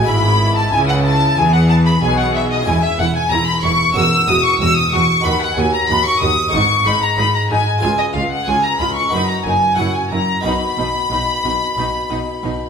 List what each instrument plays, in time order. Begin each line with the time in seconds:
0.02 harpsichord G#3 B3 E4, violin B5
0.07 double bass section G#1, cello section G#2, harpsichord G#2 G#4, viola section E4, violin section B5
0.56 violin section A5, violin A5
0.72 double bass section C#2, harpsichord C#3, cello section C#3, viola section E4, violin section G#5, violin G#5
0.88 violin section F#5, violin F#5
1.04 violin section A5, violin A5
1.37 double bass section E2, harpsichord E3, cello section E3, viola section G#4, violin section G#5, violin G#5
1.53 violin F#5, violin section F#5
1.69 violin A5, violin section A5
1.86 violin B5, violin section B5
2.01 double bass section B1, harpsichord B2, cello section B2, viola section G#4, violin section G#5, violin G#5
2.19 violin F#5, violin section F#5
2.34 violin E5, violin section E5
2.50 violin D#5, violin section D#5
2.62 harpsichord C#4 E4 G#4
2.66 double bass section E1, harpsichord E2, cello section E2, viola section E4, violin G#5, violin section G#5
2.82 violin E5, violin section E5
2.98 double bass section E1, harpsichord E2, cello section E2, viola section E4, violin F#5, violin section F#5
3.16 violin section G#5, violin G#5
3.31 double bass section E1, harpsichord E2, cello section E2, viola section E4, violin section A#5, violin A#5
3.48 violin section B5, violin B5
3.63 double bass section E1, cello section E2, harpsichord E2, viola section E4, violin C#6, violin section C#6
3.93 double bass section E1, cello section E2, harpsichord C#4 F#4 A#4, viola section F#4, violin section E6, violin E6
3.97 harpsichord E2
4.27 double bass section E1, cello section E2, harpsichord E2, viola section F#4, violin section D#6, violin D#6
4.44 violin section C#6, violin C#6
4.60 double bass section E1, cello section E2, harpsichord E2, viola section F#4, violin section E6, violin E6
4.76 violin section D#6, violin D#6
4.92 double bass section E1, harpsichord E2, cello section E2, viola section F#4, violin section C#6, violin C#6
5.21 harpsichord D#4 F#4 B4, violin section B5
5.25 double bass section D#2, harpsichord D#2, cello section D#2, viola section F#4, violin section B5, violin B5
5.42 violin section F#5, violin F#5
5.56 double bass section D#2, harpsichord D#2, cello section D#2, viola section F#4, violin section G#5, violin G#5
5.73 violin section A#5, violin A#5
5.88 double bass section D#2, harpsichord D#2, cello section D#2, viola section F#4, violin section B5, violin B5
6.05 violin section C#6, violin C#6
6.21 double bass section D#2, harpsichord D#2, cello section D#2, viola section F#4, violin section D#6, violin D#6
6.48 harpsichord D#4 G#4 B4
6.53 double bass section G#1, harpsichord G#2, cello section G#2, viola section D#4, violin section C#6, violin C#6
6.85 double bass section G#1, cello section G#2, harpsichord G#2, viola section D#4, violin section B5, violin B5
7.02 violin section A#5, violin A#5
7.17 double bass section G#1, harpsichord G#2, cello section G#2, viola section D#4, violin section B5, violin B5
7.35 violin A#5, violin section A#5
7.49 double bass section G#1, cello section G#2, harpsichord G#2, viola section D#4, violin section G#5, violin G#5
7.78 harpsichord F4 G#4 B4, violin section G#5
7.83 cello section C#2, double bass section C#2, harpsichord C#2, viola section F4, violin G#5, violin section G#5
7.99 violin D#5, violin section D#5
8.14 cello section C#2, double bass section C#2, harpsichord C#2, viola section F4, violin section F5, violin F5
8.30 violin section F#5, violin F#5
8.47 cello section C#2, double bass section C#2, harpsichord C#2, viola section F4, violin section G#5, violin G#5
8.63 violin section A#5, violin A#5
8.79 cello section C#2, double bass section C#2, harpsichord C#2, viola section F4, violin section B5, violin B5
8.96 violin section C#6, violin C#6
9.09 cello section F#2, harpsichord D#4 F#4 B4, violin section B5, violin B5
9.13 double bass section F#1, harpsichord F#2, viola section D#4
9.29 violin section A#5, violin A#5
9.45 double bass section F#1, cello section F#2, harpsichord F#2, viola section D#4, violin section G#5, violin G#5
9.76 double bass section F#1, cello section F#2, harpsichord E4 F#4 C#5, viola section E4, violin section F#5, violin F#5
9.80 harpsichord F#2
9.93 violin section G#5, violin G#5
10.10 double bass section F#1, cello section F#2, harpsichord F#2, viola section E4, violin section A#5, violin A#5
10.41 double bass section B1, cello section B2, harpsichord D#4 F#4 B4, violin B5, violin section B5
10.45 harpsichord B2, viola section D#4
10.77 double bass section B1, cello section B2, harpsichord B2, viola section D#4
11.10 double bass section B1, cello section B2, harpsichord B2, viola section D#4
11.43 double bass section B1, cello section B2, harpsichord B2, viola section D#4
11.76 double bass section B1, cello section B2, harpsichord B2, viola section D#4
12.10 double bass section B1, cello section B2, harpsichord B2, viola section D#4
12.43 double bass section B1, cello section B2, harpsichord B2, viola section D#4